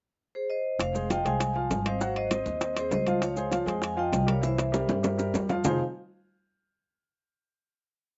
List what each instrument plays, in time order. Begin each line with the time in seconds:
0.35 vibraphone G#4 C5
0.50 vibraphone C5 D#5
0.79 upright bass F1, vibraphone C5 F5, high bongo, high conga, high timbale, maracas
0.94 grand piano G#3 G#4 C5, high bongo, high conga, maracas
1.10 grand piano F3 F4 F5, vibraphone D#5 G5, high bongo, high conga, high timbale, low timbale, maracas
1.25 upright bass C2, grand piano G#3 G#4 C5, vibraphone F5 G#5, high conga, high timbale, maracas
1.40 high bongo, high conga, high timbale, maracas
1.55 grand piano F3 F4 F5, high bongo, high conga
1.70 upright bass G#1, high bongo, low bongo, high conga, high timbale, low timbale, maracas
1.85 grand piano C4 C5 D#5, vibraphone C5 F5, high bongo, high conga, high timbale, maracas
2.01 grand piano F#3 F#4 F#5, high bongo, high conga, maracas
2.16 vibraphone C5 D#5, high bongo, high conga, high timbale
2.30 grand piano C4 C5 D#5, high bongo, high conga, high timbale, low timbale, maracas
2.46 upright bass D#2, high conga, maracas
2.61 grand piano C4 C5 D#5, high bongo, high conga, high timbale, maracas
2.76 grand piano C4 C5 D#5, vibraphone G#4 C5, high bongo, high conga, high timbale, maracas
2.91 upright bass C#2, vibraphone C5 D#5, high bongo, low bongo, high conga, low timbale, maracas
3.07 grand piano F3 F4 F5, high bongo, high conga, high timbale, maracas
3.22 vibraphone C#5 F5, high bongo, high timbale, maracas
3.37 grand piano G#3 G#4 C5, high bongo, high conga, maracas
3.51 grand piano F3 F4 F5, high bongo, high conga, high timbale, low timbale, maracas
3.66 upright bass F2, grand piano G#3 G#4 C5, high conga, high timbale, maracas
3.82 vibraphone F5 G#5, high bongo, high conga, high timbale, maracas
3.97 grand piano F3 F4 F5, vibraphone D#5 G5, high bongo, high conga
4.13 upright bass C2, high bongo, low bongo, high conga, high timbale, low timbale, maracas
4.26 grand piano G3 G4 A#4, vibraphone C#5 F5, high bongo, high conga, high timbale, maracas
4.42 grand piano E3 E4 E5, vibraphone C5 E5, high bongo, maracas
4.58 high bongo, high timbale, maracas
4.72 grand piano G3 G4 A#4, high bongo, high conga, high timbale, maracas
4.88 upright bass G2, high bongo, high conga, high timbale, maracas
5.03 grand piano G3 G4 A#4, low bongo, low timbale, maracas
5.18 grand piano G3 G4 A#4, low bongo, high conga, maracas
5.33 upright bass F2, low bongo, high conga, low timbale, maracas
5.49 grand piano F3 F4 F5, low bongo, high conga, low timbale, maracas
5.64 upright bass F1, grand piano F3 C4 D#4 F4 G#4 C5, vibraphone F5, low bongo, low conga, low timbale, maracas